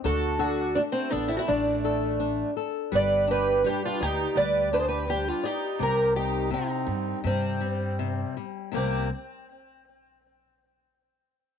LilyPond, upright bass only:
\new Staff \with { instrumentName = "Upright bass" } { \clef bass \time 4/4 \key c \minor \tempo 4 = 83 d,4. a,,8 a,,2 | g,,4. d,8 d,2 | c,4. g,8 g,2 | c,8 r2. r8 | }